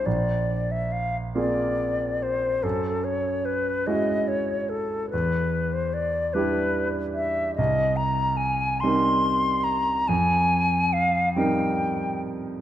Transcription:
X:1
M:6/8
L:1/16
Q:3/8=48
K:Em
V:1 name="Flute"
d3 e =f2 d4 c2 | A2 ^c2 B2 _e2 c2 A2 | B3 c d2 B4 e2 | [K:Fm] e2 b2 a2 c'4 b2 |
a4 f2 g4 z2 |]
V:2 name="Grand piano"
_B,,,6 [_B,C=F_A]6 | F,,6 [^G,^CEF]6 | E,,6 [G,DEG]6 | [K:Fm] C,,6 [G,CEB]6 |
F,,6 [G,CEB]6 |]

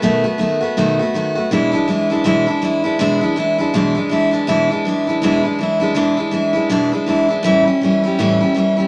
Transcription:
X:1
M:4/4
L:1/8
Q:"Swing" 1/4=162
K:Emix
V:1 name="Steel-string acoustic guitar"
[B,,^D,A,B,F] [A,B,F] [D,A,B,F] [A,B,F] [B,,D,A,B,F] [A,B,F] [D,A,B,F] [A,B,F] | [E,,B,,E,G,DE] [E,G,DE] [E,G,DE] [E,G,DE] [E,,B,,E,G,DE] [E,G,DE] [E,G,DE] [E,G,DE] | [E,,B,,E,G,DE] [E,G,DE] [E,G,DE] [E,G,DE] [E,,B,,E,G,DE] [E,G,DE] [E,G,DE] [E,G,DE] | [E,,B,,E,G,DE] [E,G,DE] [E,G,DE] [E,G,DE] [E,,B,,E,G,DE] [E,G,DE] [E,G,DE] [E,G,DE] |
[E,,B,,E,G,DE] [E,G,DE] [E,G,DE] [E,G,DE] [E,,B,,E,G,DE] [E,G,DE] [E,G,DE] [E,G,DE] | [A,,E,=G,CE] [G,CE] [E,G,CE] [G,CE] [A,,E,G,CE] [G,CE] [E,G,CE] [G,CE] |]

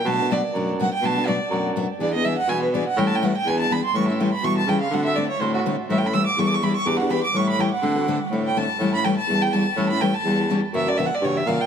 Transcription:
X:1
M:4/4
L:1/8
Q:"Swing" 1/4=247
K:Amix
V:1 name="Violin"
a2 d3 z f g | a2 d3 z3 | d ^d e f ^g B =d f | (3g a g f g ^g a b =c' |
c' e g b c' a g =f | f e d c =c F z2 | (3e g b e' d' (3c' d' c' b c' | d' f b d' c' b g f- |
f4 z g a2- | a b g a2 g a2- | a b g a3 z2 | e d (3e f d c e =f g |]
V:2 name="Steel-string acoustic guitar"
[B,,F,A,DF] [A,DF] [B,,F,A,DF] z [B,,F,A,DF] z [B,,F,A,DF] z | [B,,F,A,DF] [A,DF] [B,,F,A,DF] z [B,,F,A,DF] z [B,,F,A,DF] z | [E,B,D^G] [B,DG] [E,B,DG] z [E,B,DG] z [E,B,DG] z | [E,G,CEA] [CEA] [E,G,CEA] z [E,B,D^G] z [E,B,DG] z |
[E,G,CEA] [CEA] [E,G,CEA] z [E,G,CEA] z [E,G,CEA] z | [D,A,=CFA] [CFA] [D,A,CFA] z [D,A,CFA] z [D,A,CFA] z | [E,G,CEA] [CEA] [E,G,CEA] z [E,G,CEA] z [E,G,CEA] z | [E,B,DG] [B,DG] [E,B,DG] z [E,G,CEA] z [E,G,CEA] z |
[D,A,=CFA] [CFA] [D,A,CFA] z [D,A,CFA] z [D,A,CFA] z | [E,G,CEA] [CEA] [E,G,CEA] z [E,G,CEA] z [E,G,CEA] z | [E,G,CEA] [CEA] [E,G,CEA] z [E,G,CEA] z [E,G,CEA] z | [C,E,^A,CF] [A,CF] [C,E,A,CF] z [C,E,A,CF] z [C,E,A,CF] z |]
V:3 name="Baritone saxophone" clef=bass
B,,4 F,,4 | B,,4 F,,4 | E,,4 B,,4 | A,,4 E,,4 |
A,,4 B,,2 C,2 | D,4 A,,4 | A,,4 E,,4 | E,,4 A,,4 |
D,4 A,,4 | A,,4 E,,4 | A,,4 E,,4 | F,,4 G,,2 ^A,,2 |]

